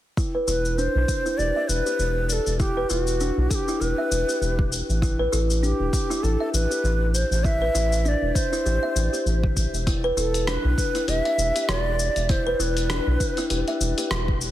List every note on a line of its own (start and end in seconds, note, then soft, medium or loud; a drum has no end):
0.17 0.34 E4 medium
0.17 kick loud
0.17 cabasa soft
0.35 0.46 B4 medium
0.47 0.88 E1 medium
0.47 0.57 E4 medium
0.47 0.79 B4 medium
0.47 cabasa medium
0.65 cabasa soft
0.78 0.94 D4 medium
0.78 1.39 C5 loud
0.78 cabasa soft
0.95 1.05 B1 medium
1.08 kick medium
1.08 cabasa medium
1.26 1.37 E4 medium
1.26 cabasa soft
1.38 1.51 E1 medium
1.38 1.55 G4 medium
1.38 1.69 D5 loud
1.38 cabasa soft
1.56 1.68 E5 medium
1.68 1.81 E1 medium
1.68 2.29 B4 loud
1.68 cabasa medium
1.86 1.99 G4 medium
1.86 cabasa soft
1.99 2.39 E1 medium
1.99 cabasa soft
2.29 2.34 B4 medium
2.29 cabasa medium
2.33 2.59 A4 medium
2.47 2.84 E1 medium
2.47 cabasa soft
2.59 2.76 E4 medium
2.59 2.91 G4 medium
2.59 kick loud
2.59 cabasa soft
2.77 2.89 B4 medium
2.89 3.30 E1 medium
2.89 3.00 E4 medium
2.89 3.02 F4 medium
2.89 cabasa medium
3.02 3.52 F#4 medium
3.07 cabasa soft
3.20 3.37 D4 medium
3.20 cabasa soft
3.38 3.47 B1 medium
3.50 3.56 A4 medium
3.50 kick loud
3.50 cabasa medium
3.55 3.82 G4 medium
3.68 3.80 E4 medium
3.68 cabasa soft
3.81 3.93 E1 medium
3.81 3.97 G4 medium
3.81 4.72 B4 medium
3.81 cabasa soft
3.98 4.11 E5 medium
4.11 4.24 E1 medium
4.11 cabasa medium
4.29 4.41 G4 medium
4.29 cabasa soft
4.41 4.82 E1 medium
4.41 cabasa soft
4.59 kick loud
4.72 cabasa medium
4.89 5.27 A1 medium
4.89 cabasa soft
5.02 5.18 E4 medium
5.02 kick loud
5.02 cabasa soft
5.19 5.31 B4 medium
5.32 5.73 A1 medium
5.32 5.42 E4 medium
5.32 5.39 A4 medium
5.32 cabasa medium
5.50 cabasa soft
5.62 5.79 D4 medium
5.62 6.24 G4 medium
5.62 cabasa soft
5.80 5.89 E1 medium
5.93 kick loud
5.93 cabasa medium
6.10 6.22 E4 medium
6.10 cabasa soft
6.23 6.36 A1 medium
6.23 6.40 G4 medium
6.23 6.53 A4 medium
6.23 cabasa soft
6.40 6.53 E5 medium
6.53 6.66 A1 medium
6.53 7.15 B4 medium
6.53 cabasa medium
6.71 6.83 G4 medium
6.71 cabasa soft
6.84 7.24 A1 medium
6.84 cabasa soft
7.14 7.46 C5 medium
7.14 cabasa medium
7.31 7.69 A1 medium
7.31 cabasa soft
7.44 7.61 E4 medium
7.44 8.05 E5 loud
7.44 kick loud
7.44 cabasa soft
7.62 7.73 B4 medium
7.75 8.15 A1 loud
7.75 7.85 E4 medium
7.75 cabasa medium
7.92 cabasa soft
8.05 8.22 D4 medium
8.05 8.36 D5 medium
8.05 8.09 E5 medium
8.05 cabasa soft
8.22 8.32 E1 medium
8.35 9.56 C5 medium
8.35 kick loud
8.35 cabasa medium
8.53 8.64 E4 medium
8.53 cabasa soft
8.66 8.78 A1 medium
8.66 8.82 G4 medium
8.66 cabasa soft
8.83 8.95 E5 medium
8.96 9.08 A1 medium
8.96 cabasa medium
9.13 9.26 G4 medium
9.13 cabasa soft
9.26 9.66 A1 medium
9.26 cabasa soft
9.44 kick loud
9.57 kick medium
9.57 cabasa medium
9.73 10.11 E1 medium
9.73 cabasa soft
9.87 10.03 E4 medium
9.87 kick loud
9.87 closed hi-hat soft
9.87 cabasa soft
10.04 10.16 B4 loud
10.17 10.57 E1 medium
10.17 10.27 E4 medium
10.17 10.49 A4 medium
10.17 cabasa medium
10.34 closed hi-hat soft
10.34 cabasa soft
10.47 10.64 D4 medium
10.47 10.53 C5 medium
10.47 cross-stick medium
10.47 closed hi-hat medium
10.47 cabasa soft
10.52 11.10 B4 medium
10.64 10.74 B1 medium
10.78 kick loud
10.78 cabasa medium
10.95 11.07 E4 medium
10.95 closed hi-hat soft
10.95 cabasa soft
11.08 11.21 E1 medium
11.08 11.25 G4 medium
11.08 11.71 E5 loud
11.08 closed hi-hat soft
11.08 cabasa soft
11.25 11.38 E5 medium
11.25 closed hi-hat soft
11.38 11.51 E1 medium
11.38 cabasa medium
11.56 11.68 G4 medium
11.56 closed hi-hat soft
11.56 cabasa soft
11.69 12.09 E1 loud
11.69 12.31 D5 loud
11.69 cross-stick loud
11.69 closed hi-hat soft
11.69 cabasa soft
11.99 cabasa medium
12.16 12.54 E1 medium
12.16 closed hi-hat soft
12.16 cabasa soft
12.29 12.46 E4 medium
12.29 12.62 C5 medium
12.29 kick loud
12.29 closed hi-hat medium
12.29 cabasa soft
12.47 12.58 B4 loud
12.59 13.00 E1 loud
12.59 12.69 E4 medium
12.59 13.81 B4 medium
12.59 cabasa medium
12.77 closed hi-hat soft
12.77 cabasa soft
12.90 13.06 D4 medium
12.90 cross-stick medium
12.90 closed hi-hat medium
12.90 cabasa soft
13.07 13.17 B1 medium
13.20 kick medium
13.20 cabasa medium
13.37 13.49 E4 loud
13.37 closed hi-hat soft
13.37 cabasa soft
13.50 13.63 E1 medium
13.50 13.67 G4 medium
13.50 closed hi-hat medium
13.50 cabasa soft
13.68 13.80 E5 medium
13.68 closed hi-hat soft
13.80 13.93 E1 loud
13.80 cabasa medium
13.98 14.11 G4 medium
13.98 closed hi-hat soft
13.98 cabasa soft
14.11 14.51 E1 medium
14.11 cross-stick medium
14.11 closed hi-hat medium
14.11 cabasa soft
14.28 kick loud
14.41 cabasa medium